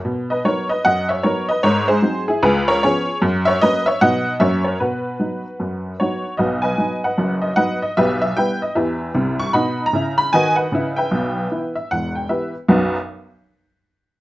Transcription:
0.05 B2
0.30 B4 D#5
0.45 F#3 B3 D#4 A#4 C#5
0.69 B4 D#5
0.85 F#2 D#5 F#5
1.09 C#5 E5
1.23 F#3 B3 D#4 A#4 C#5
1.49 B4 D#5
1.63 G#2 A#4 C#5
1.88 G#4 C5
2.02 F#3 C4 D#4
2.28 E4 G#4
2.43 C#2 G#4 B4
2.68 A#4 C#5
2.83 F3 B3 C#4 G#4 C#5
3.22 F#2
3.45 C#5 E5
3.61 F#3 A#3 C#4 B4 D#5
3.86 C#5 E5
4.01 B2 F#3 B3 D#4 D#5 F#5
4.40 F#2 F#3 A#3 C#4 C#5 E5
4.64 A#4 C#5
4.80 B2 F#4 B4
5.20 F#3 B3 D#4
5.60 F#2
6.00 F#3 B3 D#4 F#4 C#5
6.37 B1 B2 F#4 B4 D#5
6.62 B4 D#5 G#5
6.78 F#3 B3 D#4
7.04 B4 D#5 F#5
7.18 F#1 F#2
7.42 D#5
7.56 F#3 B3 D#4 B4 D#5 F#5
7.82 D#5
7.97 B1 B2 G4 B4 E5
8.21 E5
8.37 G3 B3 E4 B4 E5 G5
8.62 D#5
8.75 E2 E3 G4 B4 E5
9.14 C2 C3
9.40 C#6
9.53 B2 D#4 D#5 F#5 B5
9.86 A#5
9.93 C#3 E4
10.18 B5
10.33 D#3 F#4 B4 D#5 G#5
10.56 B4 D#5 F#5
10.72 C#3 E4
10.96 B4 E5 G5
11.11 B1 B2
11.51 E3 B3 E4
11.75 E5
11.91 E1 E2 F#5
12.15 G5
12.29 E3 B3 E4 G4 B4 E5
12.68 B1 F#2 F#3 B3 D#4 F#4 B4

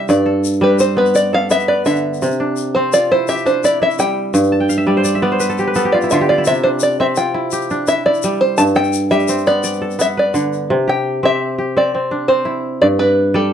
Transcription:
Already playing: C3 G3 C4 D4 E4 G4
0.09 G2 D5, shaker
0.26 A4
0.44 shaker
0.53 shaker
0.61 G3 B4
0.79 C4 C5, shaker
0.97 B3 B4
1.06 shaker
1.15 D5, shaker
1.33 A4 F5
1.50 B3 E5, shaker
1.59 shaker
1.68 B4 D5
1.85 D3 E5, shaker
1.96 shaker
2.14 shaker
2.22 C3, shaker
2.31 shaker
2.40 D4
2.57 shaker
2.75 C4 C5
2.93 F4 D5, shaker
3.11 E4 C5
3.28 G4 E5, shaker
3.37 shaker
3.46 D4 C5, shaker
3.64 E4 D5, shaker
3.82 E4 E5
3.91 shaker
3.99 G3 G5, shaker
4.34 G2, shaker
4.52 A5
4.60 G5
4.69 F5, shaker
4.78 E5
4.87 G3 D5
4.97 C5
5.04 D5, shaker
5.15 E5
5.22 B3 D5
5.32 C5
5.40 B4, shaker
5.49 A4
5.58 G4, shaker
5.67 B4
5.75 B3 A4, shaker
5.85 G4
5.92 F4 D5
6.01 E4, shaker
6.10 D3 F4 E5, shaker
6.21 G4
6.29 F4 D5
6.38 E4
6.45 C3 E5, shaker
6.63 D4 C5
6.80 D5, shaker
7.00 C4 E5
7.16 F4 G5, shaker
7.34 E4
7.51 G4, shaker
7.61 shaker
7.70 D4, shaker
7.87 E4 E5, shaker
8.06 E4 D5
8.14 shaker
8.22 G3, shaker
8.41 C5
8.58 G2 A5, shaker
8.66 shaker
8.75 A4 G5, shaker
8.84 shaker
8.93 shaker
9.11 G3 E5, shaker
9.20 shaker
9.28 C4, shaker
9.46 B3 D5, shaker
9.64 D5, shaker
9.82 A4
9.91 shaker
9.99 B3 E5, shaker
10.17 B4 D5
10.34 D3, shaker
10.53 shaker
10.70 C3
10.88 G4 G5
11.23 C4 G4 E5
11.58 G4
11.77 C4 D5
11.95 C4
12.11 D4
12.28 C4 C5
12.45 E4
12.82 G2 D5
12.99 B4 D5
13.34 G3 A4 D5

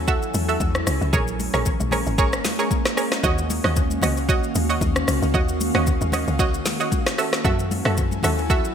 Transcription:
Already playing: D#2 F#3 C#4 E4 A4 G#5
0.08 F#4 A4 E5, kick, shaker
0.22 shaker
0.34 E2, open hi-hat, high conga, shaker
0.48 F#4 A4 E5, shaker
0.60 E2, kick, high conga, shaker
0.75 cross-stick, shaker
0.87 C#2, cross-stick, open hi-hat, shaker
1.01 C#2, shaker
1.13 A#1 G#3 A#3 G#4 A#4 C#5, kick, low conga, shaker
1.28 shaker
1.40 open hi-hat, high conga, shaker
1.54 A#1 G#4 A#4 C#5, cross-stick, shaker
1.66 kick, low conga, shaker
1.80 A#1, high conga, shaker
1.91 G#4 A#4 C#5, cross-stick, open hi-hat, high conga, low conga, shaker
2.07 G#1, shaker
2.18 G#4 A#4 C#5, kick, shaker
2.33 cross-stick, shaker
2.45 snare, open hi-hat, high conga, shaker
2.59 G#4 A#4 C#5, shaker
2.71 kick, high conga, shaker
2.85 cross-stick, snare, shaker
2.97 G#4 A#4 C#5, cross-stick, open hi-hat, shaker
3.12 cross-stick, snare, shaker
3.23 D#2 D#3 F#4 C#5 D#5 F5, kick, low conga, shaker
3.38 shaker
3.50 open hi-hat, high conga, shaker
3.64 D#2 F#4 C#5 D#5, cross-stick
3.76 kick, low conga, shaker
3.90 high conga, shaker
4.02 C#2 F#4 C#5 D#5, cross-stick, open hi-hat, high conga, low conga, shaker
4.17 shaker
4.29 F#4 C#5 D#5, kick, shaker
4.44 shaker
4.55 D#2, open hi-hat, high conga, shaker
4.69 F#4 C#5 D#5, shaker
4.81 D#2, kick, high conga, shaker
4.96 cross-stick, shaker
5.08 C#2, cross-stick, open hi-hat, shaker
5.22 C#2, shaker
5.34 D#2 F#4 C#5 D#5, kick, low conga, shaker
5.49 shaker
5.60 open hi-hat, high conga, shaker
5.75 D#2 F#4 C#5 D#5, cross-stick
5.87 kick, low conga, shaker
6.01 D#2, high conga, shaker
6.12 F#4 C#5 D#5, cross-stick, open hi-hat, high conga, low conga, shaker
6.28 C#2, shaker
6.39 F#4 C#5 D#5, kick, shaker
6.54 shaker
6.66 snare, open hi-hat, high conga, shaker
6.80 F#4 C#5 D#5, shaker
6.92 kick, high conga, shaker
7.06 cross-stick, snare, shaker
7.18 F#3 C#4 E4 F#4 A4 E5 G#5, cross-stick, open hi-hat, shaker
7.33 cross-stick, snare, shaker
7.44 F#2 F#4 A4 E5, kick, low conga, shaker
7.59 shaker
7.71 open hi-hat, high conga, shaker
7.85 F#2 F#4 A4 E5, cross-stick
7.97 kick, low conga, shaker
8.11 high conga, shaker
8.23 D#2 F#4 A4 E5, cross-stick, open hi-hat, high conga, low conga, shaker
8.38 shaker
8.50 F#4 A4 E5, kick, shaker
8.65 shaker

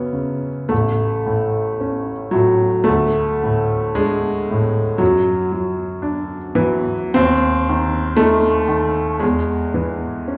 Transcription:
Already playing: F#2 C#3 B3 C#4
0.13 C#3
0.69 A1 A3
1.26 A2
1.80 C#4
2.31 A2 F#3
2.84 D2 A3
3.44 A2
3.95 G#3 D4
4.51 A2
4.98 F#2 F#3
5.52 F#3
6.02 D4
6.55 E3 F#3
7.14 D#2 C4
7.69 D#3
8.17 A3 D#4
8.68 D#3
9.20 E2 G#3
9.74 E3
10.28 C#4

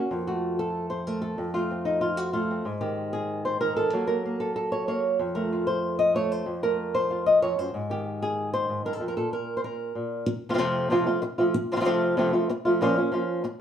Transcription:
Already playing: A#3 C#4
0.11 F2
0.27 A3 F#4
0.59 A4
0.90 C5
1.07 A3 A#4
1.22 A4
1.38 F2
1.54 A3 F4
1.71 C4
1.85 D#4
2.01 F4
2.17 F#4
2.33 A3 F4
2.51 C4
2.65 G#2
2.81 D#3 G4
3.13 G#4
3.45 C5
3.61 D#3 A#4
3.77 A4
3.93 F#3 A#3 F#4
4.07 A#3 A#4
4.26 A#3
4.40 A4
4.56 A4
4.72 C#5
4.88 A#3 C#5
5.19 F2
5.35 A3 A#4
5.53 F4
5.67 C5
5.99 D#5
6.15 A3 C#5
6.32 C5
6.46 F2
6.63 A3 A#4
6.95 C5
7.11 F4
7.26 D#5
7.42 F2 C#5
7.58 F#2 C5
7.74 G#2
7.90 D#3 G4
8.22 G#4
8.54 C5
8.69 G#2
8.85 G2 A#4
8.93 A4
9.00 F2
9.08 A#4
9.17 A#2 A4
9.33 A#4
9.57 C5
9.64 A#4
9.95 A#2
10.26 muted nylon-string guitar stroke
10.49 C3 F3 A3 C4 F4
10.54 C3 F3 A3 C4 F4
10.58 F2 C3 F3 A3 C4 F4
10.90 F2 C3 F3 A3 C4 F4
11.07 F3 A3 C4 F4
11.22 muted nylon-string guitar stroke
11.38 F3 A3 C4 F4
11.54 muted nylon-string guitar stroke
11.72 C3 F3 A3 C4 F4
11.76 C3 F3 A3 C4 F4
11.80 C3 F3 A3 C4 F4
11.85 F2 C3 F3 A3 C4 F4
12.17 F2 C3 F3 A3 C4 F4
12.33 F3 A3 C4 F4
12.49 muted nylon-string guitar stroke
12.65 F3 A3 C4 F4
12.81 A#2 F3 A#3 C#4 F4
12.97 A#3 C#4 F4
13.12 F3 A#3 C#4 F4
13.44 muted nylon-string guitar stroke

